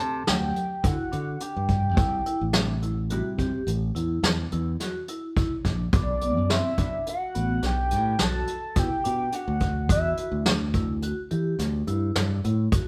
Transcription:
0.00 0.22 C3 medium
0.00 0.30 A5 loud
0.27 0.51 D2 medium
0.27 0.56 F#3 medium
0.27 0.88 G5 medium
0.27 snare medium
0.27 closed hi-hat medium
0.56 closed hi-hat soft
0.84 0.96 D3 medium
0.84 0.98 E4 medium
0.84 1.44 F#5 medium
0.84 kick medium
0.84 closed hi-hat medium
1.12 1.36 D3 medium
1.12 1.26 D4 medium
1.12 closed hi-hat medium
1.40 1.70 D4 medium
1.40 3.11 G5 medium
1.40 closed hi-hat medium
1.57 1.67 G2 medium
1.68 1.97 G2 medium
1.68 kick medium
1.68 closed hi-hat soft
1.97 2.20 C2 medium
1.97 2.12 E4 medium
1.97 kick loud
1.97 closed hi-hat medium
2.26 2.41 E4 medium
2.26 closed hi-hat medium
2.41 3.21 A1 medium
2.53 2.74 C3 medium
2.53 2.74 G3 medium
2.53 2.69 D4 medium
2.53 2.74 E4 medium
2.53 snare medium
2.53 closed hi-hat medium
2.82 2.97 E4 medium
2.82 closed hi-hat soft
3.10 3.51 C3 medium
3.10 3.51 G3 medium
3.10 3.51 E4 medium
3.10 3.25 F#4 medium
3.10 closed hi-hat medium
3.38 3.61 C3 medium
3.38 3.67 G4 medium
3.38 kick medium
3.38 closed hi-hat medium
3.67 3.90 A1 medium
3.67 closed hi-hat medium
3.95 4.18 E2 medium
3.95 4.24 E4 medium
3.95 closed hi-hat medium
4.23 4.46 E2 medium
4.23 snare loud
4.23 closed hi-hat medium
4.52 4.75 E2 medium
4.52 4.67 E4 medium
4.52 closed hi-hat soft
4.80 4.95 F#4 medium
4.80 snare soft
4.80 closed hi-hat medium
5.08 5.23 E4 medium
5.08 closed hi-hat medium
5.36 5.51 E4 medium
5.36 kick medium
5.36 closed hi-hat medium
5.65 5.88 A#1 medium
5.65 5.80 D4 medium
5.65 kick medium
5.65 snare soft
5.65 closed hi-hat soft
5.93 6.36 B1 medium
5.93 6.13 B2 medium
5.93 6.14 F#3 medium
5.93 6.08 D4 medium
5.93 6.14 D4 medium
5.93 6.53 D5 medium
5.93 kick loud
5.93 closed hi-hat medium
6.21 6.37 B3 medium
6.21 closed hi-hat medium
6.36 6.59 F#2 medium
6.50 6.64 C4 medium
6.50 7.07 E5 medium
6.50 snare medium
6.50 closed hi-hat medium
6.78 6.98 B2 medium
6.78 6.99 F#3 medium
6.78 7.07 D4 medium
6.78 6.98 D4 soft
6.78 kick medium
6.78 closed hi-hat medium
7.07 7.67 F#5 medium
7.07 closed hi-hat medium
7.35 7.58 A1 medium
7.35 7.49 B3 medium
7.35 closed hi-hat medium
7.62 7.94 B1 medium
7.62 7.91 D4 medium
7.62 8.24 G5 loud
7.62 snare soft
7.62 closed hi-hat medium
7.91 8.15 A2 medium
7.91 closed hi-hat medium
8.19 8.43 B1 medium
8.19 8.48 F#4 medium
8.19 8.81 A5 loud
8.19 snare medium
8.19 closed hi-hat medium
8.47 closed hi-hat medium
8.76 8.88 B2 medium
8.76 8.90 E4 medium
8.76 9.36 G5 loud
8.76 kick medium
8.76 snare soft
8.76 closed hi-hat medium
9.04 9.28 B2 medium
9.04 9.19 D4 medium
9.04 closed hi-hat medium
9.32 9.62 D4 medium
9.32 9.90 F#5 medium
9.32 closed hi-hat medium
9.48 9.59 D2 medium
9.60 9.89 D2 medium
9.60 kick medium
9.60 closed hi-hat medium
9.89 10.12 E2 medium
9.89 10.05 F#4 medium
9.89 10.44 E5 medium
9.89 kick medium
9.89 closed hi-hat medium
10.17 10.33 F#4 medium
10.17 closed hi-hat soft
10.32 11.12 D2 medium
10.46 10.61 D4 medium
10.46 snare loud
10.46 closed hi-hat medium
10.73 10.89 E4 medium
10.73 kick medium
10.73 closed hi-hat soft
11.02 11.17 F#4 medium
11.02 closed hi-hat medium
11.31 11.54 E3 medium
11.31 11.60 G4 medium
11.31 closed hi-hat soft
11.59 11.82 D2 medium
11.59 snare soft
11.59 closed hi-hat medium
11.87 12.10 G2 medium
11.87 12.16 E4 medium
11.87 closed hi-hat medium
12.15 12.39 G2 medium
12.15 snare loud
12.15 closed hi-hat medium
12.44 12.67 A2 medium
12.44 12.59 E4 medium
12.44 closed hi-hat medium
12.72 12.88 F#4 medium
12.72 kick medium
12.72 closed hi-hat medium

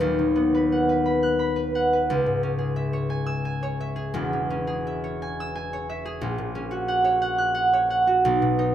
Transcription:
0.00 2.12 D#1 medium
0.00 2.13 D#2 medium
0.00 1.91 F#3 medium
0.00 0.34 B3 medium
0.00 0.53 B4 medium
0.00 2.11 D#5 medium
0.00 0.71 F#5 soft
0.00 1.04 B5 medium
0.00 2.11 D#6 medium
0.19 2.13 D#3 medium
0.36 2.12 B3 medium
0.55 0.88 B4 medium
0.72 1.74 F#5 medium
0.89 1.55 B4 medium
1.06 1.38 B5 medium
1.23 2.12 F#6 medium
1.39 2.12 B5 medium
1.56 1.92 B4 medium
1.75 2.12 F#5 medium
1.93 2.13 B4 medium
2.10 4.20 C#2 medium
2.26 4.19 G#2 medium
2.43 4.49 C#4 medium
2.59 3.95 G#4 medium
2.76 3.79 E5 medium
2.93 3.62 C#5 medium
3.10 3.44 G#5 medium
3.26 5.39 E6 medium
3.45 5.21 G#5 medium
3.63 5.03 C#5 medium
3.81 4.86 E5 medium
3.96 4.66 G#4 medium
4.14 6.23 E1 medium
4.14 6.24 E2 medium
4.33 6.24 E3 medium
4.50 6.54 C#4 medium
4.67 6.04 G#4 medium
4.87 5.88 E5 medium
5.04 5.72 C#5 medium
5.22 5.54 G#5 medium
5.40 6.26 E6 medium
5.55 6.25 G#5 medium
5.73 7.03 C#5 medium
5.90 6.25 E5 medium
6.05 6.25 G#4 medium
6.21 8.27 A#1 loud
6.38 8.27 A#2 medium
6.55 8.27 C#4 medium
6.71 8.06 F#4 medium
6.88 7.21 F#5 medium
7.04 7.72 C#5 medium
7.22 7.53 F#5 medium
7.38 8.27 F#6 loud
7.55 7.89 F#5 medium
7.73 8.27 C#5 medium
7.90 8.27 F#5 medium
8.07 8.27 F#4 medium
8.25 8.75 B1 loud
8.42 8.75 B2 medium
8.59 8.75 D#4 medium

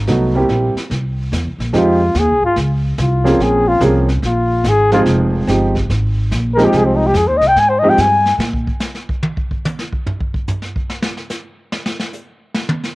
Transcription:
0.07 0.48 C2 medium
0.07 0.32 F#3 medium
0.07 0.32 A3 medium
0.07 0.33 B3 medium
0.07 0.33 D#4 medium
0.07 0.33 F#4 medium
0.07 brush sweep soft
0.07 kick soft
0.07 snare soft
0.35 0.71 G3 medium
0.35 0.72 A#3 soft
0.35 0.72 C4 medium
0.35 0.72 E4 soft
0.35 0.72 G4 medium
0.49 0.74 A#1 medium
0.49 kick soft
0.49 snare medium
0.49 hi-hat pedal soft
0.75 muted upright bass stroke soft
0.75 snare soft
0.90 1.31 C2 medium
0.90 brush sweep medium
0.90 kick soft
0.90 snare medium
1.32 1.46 E2 medium
1.32 kick soft
1.32 snare medium
1.32 hi-hat pedal medium
1.45 1.58 C2 medium
1.59 1.72 A#1 medium
1.59 snare soft
1.73 2.14 F2 medium
1.73 1.98 F3 medium
1.73 1.98 G#3 medium
1.73 1.98 C4 medium
1.73 1.99 D#4 medium
1.73 1.98 G4 medium
1.73 brush sweep soft
1.73 kick soft
1.73 snare soft
1.78 2.21 F4 medium
2.15 2.30 D#2 medium
2.15 kick soft
2.15 snare medium
2.15 hi-hat pedal soft
2.19 2.44 G#4 medium
2.28 2.42 C2 medium
2.42 2.55 G#1 medium
2.42 2.57 F4 medium
2.56 2.97 C#2 medium
2.56 brush sweep medium
2.56 kick soft
2.56 snare soft
2.98 3.38 C2 loud
2.98 kick soft
2.98 snare medium
2.98 hi-hat pedal medium
3.02 3.44 F4 medium
3.24 3.78 F3 medium
3.24 3.78 A#3 medium
3.24 3.79 C4 medium
3.24 3.78 C#4 medium
3.24 3.79 G#4 medium
3.24 snare soft
3.39 3.80 A#1 medium
3.39 3.69 G#4 medium
3.39 brush sweep medium
3.39 kick soft
3.39 snare soft
3.68 3.82 F4 medium
3.80 4.21 C2 loud
3.80 4.06 F3 medium
3.80 4.06 A#3 medium
3.80 4.06 C4 medium
3.80 4.07 C#4 medium
3.80 4.06 G#4 medium
3.80 kick soft
3.80 snare medium
3.80 hi-hat pedal medium
4.08 snare soft
4.22 4.63 A#1 medium
4.22 4.70 F4 medium
4.22 brush sweep medium
4.22 kick soft
4.22 snare soft
4.64 5.05 G#1 medium
4.64 kick soft
4.64 snare medium
4.64 hi-hat pedal medium
4.68 4.93 G#4 medium
4.92 5.45 F3 medium
4.92 5.45 G#3 medium
4.92 5.45 C4 medium
4.92 5.45 D#4 medium
4.92 5.02 F4 medium
4.92 5.46 G#4 medium
4.92 snare soft
5.06 5.46 F1 medium
5.06 brush sweep soft
5.06 kick soft
5.06 snare soft
5.47 5.88 G1 medium
5.47 5.73 F3 medium
5.47 5.73 G#3 soft
5.47 5.73 C4 medium
5.47 5.73 D#4 soft
5.47 5.73 G4 medium
5.47 kick soft
5.47 snare medium
5.47 hi-hat pedal medium
5.75 kick medium
5.75 snare soft
5.89 6.30 G#1 medium
5.89 brush sweep medium
5.89 kick soft
5.89 snare medium
6.31 6.72 A#1 medium
6.31 kick soft
6.31 snare medium
6.31 hi-hat pedal medium
6.54 7.11 F3 medium
6.54 7.11 G#3 medium
6.54 7.11 C4 medium
6.54 6.66 A#4 medium
6.58 7.12 D#4 medium
6.58 7.12 G4 medium
6.58 snare soft
6.64 6.78 G4 medium
6.72 7.13 C2 medium
6.72 brush sweep soft
6.72 kick soft
6.72 snare soft
6.77 6.87 G#4 medium
6.85 6.98 C4 medium
6.96 7.08 D#4 medium
7.07 7.18 G4 medium
7.14 7.27 F2 medium
7.14 7.29 G#4 medium
7.14 kick soft
7.14 snare medium
7.14 hi-hat pedal medium
7.27 7.40 D#2 medium
7.27 7.39 C5 medium
7.37 7.55 C2 medium
7.37 7.49 D#5 loud
7.42 snare soft
7.48 7.61 G5 loud
7.56 7.97 G#2 medium
7.56 7.71 G#5 loud
7.56 brush sweep medium
7.56 kick soft
7.56 snare medium
7.69 7.81 C5 medium
7.79 7.96 F3 medium
7.79 7.91 D#5 medium
7.83 7.96 G#3 medium
7.83 7.97 C4 medium
7.83 7.97 D#4 medium
7.83 7.97 G4 medium
7.90 8.02 G5 medium
7.98 8.37 G2 medium
7.98 8.34 G#5 medium
7.98 kick soft
7.98 snare medium
7.98 hi-hat pedal medium
8.26 snare soft
8.38 8.65 A#2 medium
8.38 snare medium
8.53 kick medium
8.67 kick medium
8.80 snare medium
8.80 hi-hat pedal medium
8.95 snare soft
9.09 kick medium
9.23 high tom medium
9.37 kick medium
9.51 kick medium
9.65 hi-hat pedal medium
9.65 high tom loud
9.79 snare soft
9.93 kick medium
10.06 floor tom medium
10.20 kick medium
10.34 kick medium
10.48 floor tom medium
10.48 hi-hat pedal medium
10.62 snare soft
10.76 kick medium
10.89 snare medium
11.02 snare loud
11.17 snare soft
11.30 snare medium
11.30 hi-hat pedal medium
11.72 snare loud
11.86 snare loud
11.99 snare medium
12.13 hi-hat pedal medium
12.54 snare loud
12.69 high tom loud
12.83 snare soft

